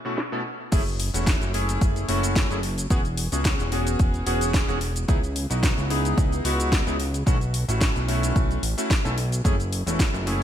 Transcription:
0.05 B2 A3 C#4 E4 F#4
0.18 snare
0.32 B2 A3 C#4 E4 A4
0.72 F#1 A3 C#4 E4 G#4, kick, closed hi-hat, crash, shaker
0.87 closed hi-hat, shaker
1.00 open hi-hat
1.14 E1 A3 C#4 E4 F#4, closed hi-hat, shaker
1.27 kick, snare, closed hi-hat, shaker
1.42 F#1, closed hi-hat, shaker
1.54 A3 C#4 E4 G#4, open hi-hat
1.69 closed hi-hat, shaker
1.81 F#1, kick, closed hi-hat, shaker
1.96 closed hi-hat, shaker
2.08 F#1 A3 C#4 E4 F#4, open hi-hat
2.23 closed hi-hat, shaker
2.36 kick, snare, closed hi-hat, shaker
2.50 F#1 A3 C#4 E4 G#4, closed hi-hat, shaker
2.63 open hi-hat
2.78 closed hi-hat, shaker
2.90 E1 B3 C#4 F#4 G#4, kick, closed hi-hat, shaker
3.05 closed hi-hat, shaker
3.17 open hi-hat
3.32 C#2 B3 C#4 F#4 G#4, closed hi-hat, shaker
3.45 kick, snare, closed hi-hat, shaker
3.59 E1, closed hi-hat, shaker
3.72 B3 C#4 F#4 G#4, open hi-hat
3.87 closed hi-hat, shaker
3.99 E1, kick, closed hi-hat, shaker
4.14 closed hi-hat, shaker
4.26 E1 B3 C#4 F#4 G#4, open hi-hat
4.41 closed hi-hat, shaker
4.54 kick, snare, closed hi-hat, shaker
4.68 E1 B3 C#4 F#4 G#4, closed hi-hat, shaker
4.81 open hi-hat
4.96 closed hi-hat, shaker
5.08 C#2 B3 D#4 E4 G#4, kick, closed hi-hat, shaker
5.23 closed hi-hat, shaker
5.36 open hi-hat
5.50 B1 B3 D#4 E4 F#4, closed hi-hat, shaker
5.63 kick, snare, closed hi-hat, shaker
5.78 C#2, closed hi-hat, shaker
5.90 B3 D#4 E4 G#4, open hi-hat
6.05 closed hi-hat, shaker
6.18 C#2, kick, closed hi-hat, shaker
6.32 closed hi-hat, shaker
6.44 C#2 B3 D#4 E4 F#4, open hi-hat
6.60 closed hi-hat, shaker
6.72 kick, snare, closed hi-hat, shaker
6.87 C#2 B3 D#4 E4 G#4, closed hi-hat, shaker
7.00 open hi-hat
7.14 closed hi-hat, shaker
7.26 B1 A3 C#4 E4 F#4, kick, closed hi-hat, shaker
7.41 closed hi-hat, shaker
7.54 open hi-hat
7.68 A1 A3 C#4 E4 F#4, closed hi-hat, shaker
7.81 kick, snare, closed hi-hat, shaker
7.96 B1, closed hi-hat, shaker
8.08 A3 C#4 E4 F#4, open hi-hat
8.23 closed hi-hat, shaker
8.36 B1, kick, closed hi-hat, shaker
8.51 closed hi-hat, shaker
8.63 A1, open hi-hat
8.77 A3 C#4 E4 F#4, closed hi-hat, shaker
8.90 kick, snare, closed hi-hat, shaker
9.04 B1 A3 C#4 E4 A4, closed hi-hat, shaker
9.18 open hi-hat
9.32 closed hi-hat, shaker
9.44 F#1 A3 C#4 E4 G#4, kick, closed hi-hat, shaker
9.60 closed hi-hat, shaker
9.73 open hi-hat
9.86 E1 A3 C#4 E4 F#4, closed hi-hat, shaker
9.99 kick, snare, closed hi-hat, shaker
10.14 F#1, closed hi-hat, shaker
10.26 A3 C#4 E4 G#4, open hi-hat

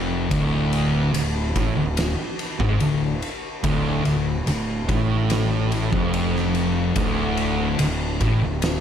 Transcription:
Already playing: F1 F2
0.30 D1 D2, kick, ride
0.73 ride
1.13 D1 D2, ride
1.56 A1 A2, kick, ride
1.76 D1 D2
1.97 snare, ride
2.39 ride
2.60 G#1 G#2, kick
2.80 D1 D2, ride
3.22 ride
3.64 D1 D2, kick, ride
4.05 D1 D2, ride
4.47 D1 D2, ride
4.88 A1 A2, kick, ride
5.30 snare, ride
5.72 ride
5.93 F1 F2, kick
6.14 ride
6.36 snare
6.55 ride
6.96 D1 D2, kick, ride
7.37 ride
7.79 D1 D2, ride
8.20 A1 A2, kick, ride
8.41 D1 D2
8.62 snare, ride

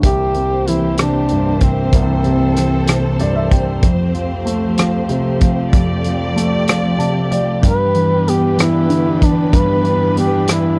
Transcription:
0.03 C2 E3 A#3 C4 G4 C5, kick, closed hi-hat
0.34 C3, closed hi-hat
0.67 E3 E4, closed hi-hat
0.97 C3 D4, cross-stick, closed hi-hat
1.28 G2, closed hi-hat
1.60 C3 C4, kick, closed hi-hat
1.92 C2 C4 A4, kick, closed hi-hat
2.24 C3, closed hi-hat
2.56 E3, cross-stick, closed hi-hat
2.87 C3, cross-stick, closed hi-hat
3.19 G2 D5, closed hi-hat
3.36 E5
3.51 C3 G5, kick, closed hi-hat
3.82 F2 F3 A3 G4, kick, closed hi-hat
4.14 F3, closed hi-hat
4.45 A3, closed hi-hat
4.77 F3, cross-stick, closed hi-hat
5.09 C3, closed hi-hat
5.41 F3, kick, closed hi-hat
5.72 F2 D5, kick, closed hi-hat
6.04 F3, closed hi-hat
6.36 A3, closed hi-hat
6.67 F3, cross-stick, closed hi-hat
6.98 C3 A5, closed hi-hat
7.31 F3 D5, closed hi-hat
7.63 G2 E3 B3 D4 B4, kick, closed hi-hat
7.94 E3, closed hi-hat
8.28 B3 G4, closed hi-hat
8.57 E3 E4, cross-stick, closed hi-hat
8.89 D3, closed hi-hat
9.21 E3 D4, kick, closed hi-hat
9.53 G2 B4, kick, closed hi-hat
9.83 E3, closed hi-hat
10.16 B3 G4, closed hi-hat
10.47 E3 E4, cross-stick, closed hi-hat

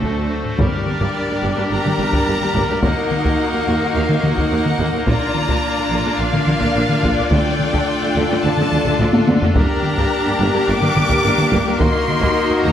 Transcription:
Already playing: D2 D3 F#3 A3 C4 F#4 A4 C5
0.02 taiko
0.45 taiko low-mid
0.58 G1 G2 G3 A#3 D4 G4 A#4 D5, taiko
0.87 taiko mid
1.01 G2 G3, taiko
1.29 G2 G3
1.43 G1 G2 G3
1.56 G2 G3
1.70 G1 G2 G3 A#5
1.84 G2 G3, taiko mid
1.98 G1 G2 G3, taiko mid
2.12 G2 G3, taiko
2.27 G1 G2 G3
2.41 G2 G3, taiko mid
2.55 G1 G2 G3, taiko
2.69 G2 G3
2.82 D#2 A#3 D#4 F#4 D#5 F#5, taiko
3.11 taiko mid
3.24 D#2 A#3, taiko
3.53 D#2 A#3
3.67 D#2 A#3
3.81 D#2 A#3
3.95 D#2 A#3 F5
4.09 D#2 A#3, taiko mid
4.23 D#2 A#3 F#5, taiko mid
4.37 D#2 A#3, taiko
4.51 D#2 A#3
4.65 D#2, taiko mid
4.69 A#3
4.79 D#2 A#3, taiko
4.93 D#2 A#3
5.06 A#1 A#2 A#3 D4 F4 A#4 D5 A#5, taiko
5.35 taiko mid
5.49 A#2 A#3, taiko
5.77 A#2 A#3
5.90 A#1 A#2 A#3
6.05 A#2 A#3
6.19 A#1 A#2 A#3 F5
6.33 A#2 A#3, taiko mid
6.47 A#1 A#2 A#3, taiko mid
6.61 A#2 A#3, taiko
6.75 A#1 A#2 A#3
6.89 A#2 A#3, taiko mid
7.03 A#1 A#2 A#3, taiko
7.17 A#2 A#3
7.31 D2 D3 A3 D4 F4 A4 G5, taiko
7.59 taiko mid
7.74 D3 A3, taiko
8.01 D3 A3
8.16 D2 D3 A3
8.30 D3 A3
8.44 D2 D3 A3 A5
8.58 D3 A3, taiko mid
8.71 D2 D3 A3, taiko mid
8.86 D3 A3, taiko
8.99 D2 D3 A3, taiko low-mid
9.13 D3 A3, taiko high
9.27 D2 D3 A3, taiko high
9.42 D3 A3, taiko low
9.55 G1 G2 A#3 D4 G4 A#4 D5 A#5, taiko
9.84 taiko mid
9.98 G2 A#3, taiko
10.26 G2 A#3
10.40 G1 G2 A#3
10.54 G2 A#3
10.67 G1 G2 A#3 D6
10.82 G2 A#3, taiko mid
10.95 G1 G2 A#3, taiko mid
11.10 G2 A#3, taiko
11.24 G1 G2 A#3
11.38 G2 A#3, taiko mid
11.51 G1 G2 A#3, taiko
11.65 G2 A#3
11.79 D#2 A#3 D#4 F#4 D#5 C6, taiko
12.08 taiko mid
12.21 D#2 A#3, taiko
12.50 D#2 A#3
12.63 D#2 A#3 A#5

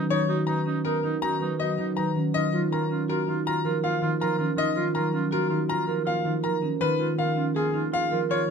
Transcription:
Already playing: F#3 A#3 B3 C#4
0.09 D#3 D#4 C#5
0.28 A#3 D#4 F#4
0.47 C#4 D#4 B4 A#5
0.66 C#4 D#4
0.84 B3 D#4 A#4
1.03 D#3 D#4
1.22 C#4 D#4 F#4 A#5
1.41 F#3 D#4 B4
1.59 B3 D#4 F#4 D#5
1.78 D#3 D#4
1.96 F#3 D#4 B4 A#5
2.15 D#3 C#4
2.34 D#3 D#4 F4 D#5
2.53 F#3 F4
2.71 C#4 F4 A#4 A#5
2.90 C#4 F4
3.08 A#3 F4 F#4 A#4
3.27 D#3 D#4 F4
3.46 F4 A#5
3.64 F3 F4 A#4
3.83 A#3 F4 F5
4.01 D#3 D#4 F4
4.20 F3 F4 A#4 A#5
4.38 D#3 C#4 F4
4.56 D#3 D#4 F4 D#5
4.75 F#3 F4
4.94 C#4 F4 A#4 A#5
5.13 C#4 F4
5.31 A#3 F4 F#4 A#4
5.50 D#3 D#4 F4
5.68 F4 A#5
5.87 F3 F4 A#4
6.05 A#3 F4 F5
6.24 D#3 D#4 F4
6.43 F3 F4 A#4 A#5
6.62 D#3 C#4
6.80 D#3 D#4 F4 B4
6.99 G#3 F4
7.17 B3 F4 A#4 F5
7.36 C#4 F4
7.55 A#3 F4 G#4
7.73 D#3 D#4 F4
7.92 F4 F5
8.11 F3 F4 A#4
8.30 A#3 F4 C#5

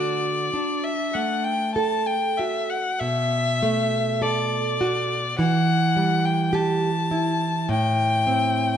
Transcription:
Already playing: D3 F#4 A4 D5
0.54 D4
0.84 E5
1.14 A3 F#5
1.44 G5
1.75 A4 A5
2.06 G5
2.38 F#4 E5
2.69 F#5
3.00 B2 E5
3.63 A3
4.22 A4 D5
4.81 F#4
5.39 E3 F#5
5.96 G3
6.25 G5
6.53 G4 A5
7.11 E4
7.69 A2 G5
8.27 C4

